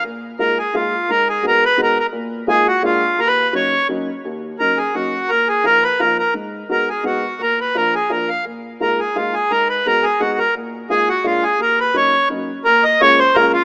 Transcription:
<<
  \new Staff \with { instrumentName = "Accordion" } { \time 3/4 \key ees \minor \tempo 4 = 172 r4 bes'8 aes'8 f'4 | bes'8 aes'8 bes'8 ces''8 bes'8 bes'8 | r4 aes'8 ges'8 f'4 | bes'16 ces''8. des''4 r4 |
r4 bes'8 aes'8 ges'4 | bes'8 aes'8 bes'8 ces''8 bes'8 bes'8 | r4 bes'8 aes'8 ges'4 | bes'8 ces''8 bes'8 aes'8 bes'8 f''8 |
r4 bes'8 aes'8 f'8 aes'8 | bes'8 ces''8 bes'8 aes'8 ges'8 bes'8 | r4 aes'8 ges'8 f'8 aes'8 | bes'8 ces''8 des''4 r4 |
\key bes \minor bes'8 ees''8 des''8 c''8 bes'8 f'8 | }
  \new Staff \with { instrumentName = "Upright piano" } { \time 3/4 \key ees \minor bes,4 <aes bes ees' f'>8 r8 <aes bes ees' f'>8 r8 | aes,4 <aes ces' ees' ges'>8 r8 <aes ces' ees' ges'>8 r8 | bes,4 <aes bes ees' f'>8 r8 <aes bes d' f'>8 r8 | ees,4 <ges bes des' ees'>8 r8 <ges bes des' ees'>8 r8 |
ees,4 <ges bes des' ees'>8 r8 <ges bes des' ees'>8 r8 | bes,4 <f bes ees' f'>8 r8 <f bes ees' f'>8 r8 | aes,4 <aes ces' ees' ges'>8 r8 <aes ces' ees' ges'>8 r8 | bes,4 <f bes d' f'>8 r8 <f bes d' f'>8 r8 |
bes,4 <aes bes ees' f'>8 r8 <aes bes ees' f'>8 r8 | aes,4 <aes ces' ees' ges'>8 r8 <aes ces' ees' ges'>8 r8 | bes,4 <aes bes ees' f'>8 r8 <aes bes d' f'>8 r8 | ees,4 <ges bes des' ees'>8 r8 <ges bes des' ees'>8 r8 |
\key bes \minor bes,4 <aes bes des' f'>8 r8 <aes bes des' f'>8 r8 | }
>>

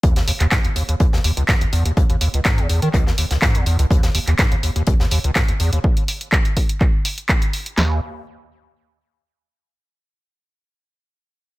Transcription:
<<
  \new Staff \with { instrumentName = "Acid bass" } { \clef bass \time 4/4 \key des \dorian \tempo 4 = 124 ees,16 ees,16 ees,16 ees,16 aes,16 ees,16 ees,16 ees,16 ees,16 ees,16 ees,16 des,16 aes,16 ees,16 fes,16 ees,16 | ees,16 ees,16 ees,16 des,16 aes,16 fes,16 fes,16 ees16 des,16 ees,16 ees,16 des,16 aes,16 fes,16 fes,16 des,16 | ees,16 ees,16 ees,16 ees,16 aes,16 ees,16 ees,16 ees,16 ees,16 ees,16 ees,16 des,16 aes,16 ees,16 fes,16 ees,16 | r1 |
ees,8 r2. r8 | r1 | }
  \new DrumStaff \with { instrumentName = "Drums" } \drummode { \time 4/4 <hh bd>16 <hh sn>16 <hh hho>16 <hc hh>16 <hc hh bd sn>16 hh16 <hh hho>16 hh16 <hh bd>16 sn16 <hh hho>16 hh16 <hc hh bd sn>16 hh16 <hh hho>16 hh16 | <hh bd>16 hh16 <hh hho>16 hh16 <hc hh bd sn>16 hh16 <hh hho>16 hh16 <hc hh bd>16 sn16 <hh hho>16 <hh sn>16 <hc hh bd sn>16 hh16 <hh hho>16 hh16 | <hh bd>16 <hh sn>16 <hh hho>16 <hc hh>16 <hc hh bd sn>16 hh16 <hh hho>16 hh16 <hh bd>16 sn16 <hh hho>16 hh16 <hc hh bd sn>16 hh16 <hh hho>16 hh16 | bd16 hh16 hho16 hh16 <hc bd>16 hh16 <hho bd>16 hh16 <hc bd>8 hho16 hh16 <hc bd>16 hh16 hho16 hh16 |
<hc sn>4 r4 r4 r4 | r4 r4 r4 r4 | }
>>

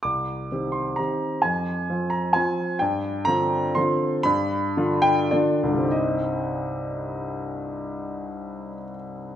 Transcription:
\new Staff \with { instrumentName = "Grand piano" } { \time 3/4 \key c \minor \tempo 4 = 120 << { d'''4. c'''8 bes''4 | aes''4. bes''8 aes''4 | g''4 bes''4 c'''4 | b''4. g''8 d''4 |
<c, g, g c' ees' g' ees''>2.~ | <c, g, g c' ees' g' ees''>2. | } \\ { c,4 <ees c' g'>4 <ees c' g'>4 | f,4 <f c' f'>4 <f c' f'>4 | g,4 <d c' f'>4 <d c' f'>4 | g,4 <d d' f'>4 <d d' f'>4 |
r2. | r2. | } >> }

